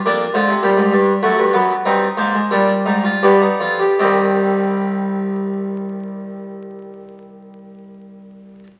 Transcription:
<<
  \new Staff \with { instrumentName = "Harpsichord" } { \time 3/4 \key c \minor \tempo 4 = 75 << { d''8 c''2~ c''8 | ees''8 c''4. d''4 | <ees g ees''>2.~ | <ees g ees''>2. | } \\ { d'8 f'8 g'4 fis'4 | ees'4 d'8 ees'16 f'16 g'16 ees'16 f'16 g'16 | g'2.~ | g'2. | } >> }
  \new Staff \with { instrumentName = "Harpsichord" } { \clef bass \time 3/4 \key c \minor << { bes8 aes8 g4 a8 b8 | c'8 bes16 aes16 g4 b4 | c'2.~ | c'2. | } \\ { f,8 d16 c16 bes,16 aes,16 g,8 fis,16 g,16 fis,8 | g,8 aes,8 bes,8 aes,8 g,8 f,8 | c,2.~ | c,2. | } >> }
>>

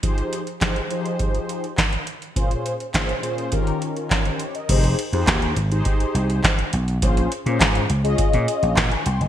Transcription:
<<
  \new Staff \with { instrumentName = "Analog polysynth" } { \time 4/4 \key f \minor \tempo 4 = 103 << { r1 | r2 r8. <f' bes'>8 <g' c''>16 <g' des''>16 <bes' ees''>16~ | <bes' ees''>16 r2. r8. | r2. r16 <aes'' des'''>16 <g'' c'''>16 <ees'' aes''>16 | } \\ { <f ees' g' aes' c''>8. r16 <f ees' g' aes' c''>16 r16 <f ees' g' aes' c''>4~ <f ees' g' aes' c''>16 r4 r16 | <bes, des' f' aes' c''>8. r16 <bes, des' f' aes' c''>16 r16 <bes, des' f' aes' c''>8 <ees des' f' g' bes'>4. r8 | <ees' g' aes' c''>8 r16 <ees' g' aes' c''>8. r16 <ees' g' aes' c''>4~ <ees' g' aes' c''>16 r4 | <des' f' aes' c''>8 r16 <des' f' aes' c''>8. r16 <des' f' aes' ees''>4~ <des' f' aes' ees''>16 r4 | } >> }
  \new Staff \with { instrumentName = "Slap bass" } { \clef bass \time 4/4 \key f \minor r1 | r1 | f,,8 r16 f,16 ees,8 aes,,8 r8 c,8 r8 b,,8 | bes,,8 r16 bes,16 aes,8 des,8 r16 bes,16 r16 bes,,16 bes,16 r16 c,16 ges,,16 | }
  \new DrumStaff \with { instrumentName = "Drums" } \drummode { \time 4/4 <hh bd>16 hh16 hh16 hh16 <hc hh bd sn>16 hh16 hh16 hh16 <hh bd>16 hh16 hh16 hh16 <hc hh bd sn>16 hh16 hh16 hh16 | <hh bd>16 hh16 hh16 hh16 <hc hh bd sn>16 hh16 hh16 hh16 <hh bd>16 hh16 hh16 hh16 <hc hh bd sn>16 hh16 hh16 hh16 | <cymc hh bd>16 hh16 hh16 hh16 <hc hh bd sn>16 hh16 hh16 hh16 <hh bd>16 hh16 hh16 hh16 <hc hh bd sn>16 hh16 hh16 hh16 | <hh bd>16 hh16 hh16 hh16 <hc hh bd sn>16 hh16 hh16 hh16 <hh bd>16 hh16 hh16 hh16 <hc hh bd sn>16 hh16 hh16 hh16 | }
>>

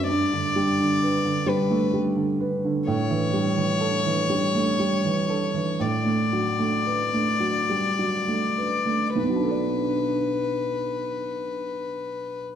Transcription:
<<
  \new Staff \with { instrumentName = "Violin" } { \time 6/8 \key b \minor \tempo 4. = 39 d''4. b'8 r4 | cis''2. | d''2. | b'2. | }
  \new Staff \with { instrumentName = "Felt piano" } { \clef bass \time 6/8 \key b \minor g,16 d16 g16 d16 b'16 d16 g16 a16 g16 d16 b'16 d16 | a,16 e16 g16 e16 a'16 e16 g16 a16 g16 e16 a'16 e16 | a,16 a16 fis16 a16 b'16 a16 fis16 g16 fis16 a16 b'16 a16 | <b,, b, fis d' a' d''>2. | }
>>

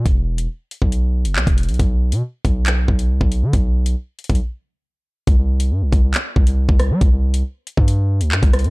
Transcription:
<<
  \new Staff \with { instrumentName = "808-style bass" } { \clef bass \time 4/4 \key c \lydian \tempo 4 = 138 e,,4 r8. b,,4 fis,,16 b,,16 e,,8 b,,16 | b,,8. b,16 r8 b,,4 b,,8 c,16 b,,8 d16 | b,,4 r8. b,,16 r2 | c,4 g,16 c,16 c,8 r8 c,8. c,8 g16 |
c,4 r8. g,4 d,16 g,16 c,8 g,16 | }
  \new DrumStaff \with { instrumentName = "Drums" } \drummode { \time 4/4 <hh bd>8. hh16 r8 hh16 bd16 hh8. hh16 hc16 <hh bd>16 hh32 hh32 hh32 hh32 | <hh bd>8. hh16 r8 <hh bd>8 <hc hh>8 bd16 hh16 r16 bd16 hh8 | <hh bd>8. hh16 r8 hh32 hh32 <hh bd>32 hh32 r4 r4 | <hh bd>8. hh16 r8 <hh bd>8 <hc hh>8 bd16 hh16 r16 bd16 <hh ss>8 |
<hh bd>8. hh16 r8 hh16 bd16 hh8. hh16 hc16 <hh bd>16 <hh ss>32 hh32 hh16 | }
>>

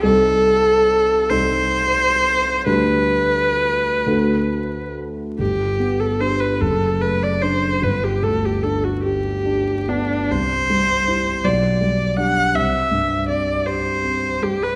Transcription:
<<
  \new Staff \with { instrumentName = "Viola" } { \time 6/8 \key g \major \tempo 4. = 49 a'4. c''4. | b'2~ b'8 r8 | g'8. a'16 c''16 b'16 a'8 b'16 d''16 c''8 | b'16 g'16 a'16 g'16 a'16 fis'16 g'4 d'8 |
c''4. d''4 fis''8 | e''4 d''8 c''4 g'16 b'16 | }
  \new Staff \with { instrumentName = "Grand piano" } { \time 6/8 \key g \major <c, g ees' a'>4. <c, g ees' a'>4. | <d, g d' g'>4. <d, a d' fis'>4. | g,,8 b8 <d' g'>8 fis,,8 a8 d'8 | g,,8 d,8 d'8 g'8 d'8 b8 |
c,8 g8 <e' g'>8 b,,8 g8 <d' g'>8 | c,8 g,8 c'8 g'8 c'8 g8 | }
>>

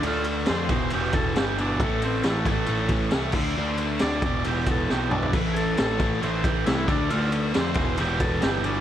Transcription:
<<
  \new Staff \with { instrumentName = "Transistor combo organ" } { \time 4/4 \key a \minor \tempo 4 = 136 <a f'>8 r8 c''4 g'8 a'8 g'8 d'8 | a8 c'8 a8 <gis a>4 r4. | r4 d''4 g'8 a'8 g'8 d'8 | r8 <gis' a'>4. c''8 g'8 e'8 d'8 |
<a f'>8 r8 c''4 g'8 a'8 g'8 d'8 | }
  \new Staff \with { instrumentName = "Overdriven electric guitar" } { \clef bass \time 4/4 \key a \minor <d a d'>4 <d a d'>8 <e, b, e>8 <e, b, e>4 <e, b, e>8 <e, b, e>8 | <a, e a>4 <a, e a>8 <a, e a>8 <a, e a>4 <a, e a>8 <d a d'>8 | <d a d'>4 <d a d'>8 <e, b, e>8 <e, b, e>4 <e, b, e>8 <e, b, e>8 | <a, e a>4 <a, e a>8 <a, e a>8 <a, e a>4 <a, e a>8 <d a d'>8 |
<d a d'>4 <d a d'>8 <e, b, e>8 <e, b, e>4 <e, b, e>8 <e, b, e>8 | }
  \new Staff \with { instrumentName = "Picked electric bass" } { \clef bass \time 4/4 \key a \minor d,4 f,8 e,,8 e,,4 g,,4 | a,,4 a,,4 a,,4 c,8 d,8 | d,4 d,8 e,,8 e,,4 b,,4 | a,,4 a,,4 a,,4 c,8 d,8 |
d,4 f,8 e,,8 e,,4 g,,4 | }
  \new DrumStaff \with { instrumentName = "Drums" } \drummode { \time 4/4 cymr8 cymr8 <cymr sn>8 <bd cymr>8 cymr8 <bd cymr>8 <cymr sn>8 cymr8 | <bd cymr>8 cymr8 <cymr sn>8 <bd cymr>8 cymr8 <bd cymr>8 <cymr sn>8 <cymc bd>8 | r8 cymr8 <cymr sn>8 <bd cymr>8 cymr8 <bd cymr>8 sn8 toml16 tomfh16 | <cymc bd>8 cymr8 <cymr sn>8 <bd cymr>8 cymr8 <bd cymr>8 <cymr sn>8 <bd cymr>8 |
cymr8 cymr8 <cymr sn>8 <bd cymr>8 cymr8 <bd cymr>8 <cymr sn>8 cymr8 | }
>>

